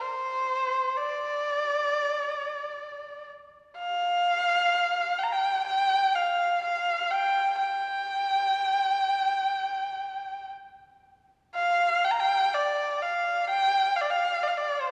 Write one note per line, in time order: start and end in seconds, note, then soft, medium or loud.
0.01 0.98 C5 medium
0.97 3.29 D5 medium
3.79 5.20 F5 medium
5.19 5.25 G5 medium
5.23 5.34 A#5 medium
5.32 5.66 G5 medium
5.67 6.16 G5 medium
6.15 6.62 F5 medium
6.63 7.12 F5 medium
7.10 7.58 G5 medium
7.58 10.49 G5 medium
11.55 12.06 F5 medium
12.04 12.12 G5 medium
12.11 12.21 A#5 medium
12.20 12.56 G5 medium
12.54 13.03 D5 medium
13.02 13.48 F5 medium
13.50 13.97 G5 medium
13.96 14.02 F5 medium
14.01 14.11 D5 medium
14.10 14.44 F5 medium
14.43 14.49 D5 medium
14.47 14.59 F5 medium
14.57 14.82 D5 medium
14.80 14.91 C5 medium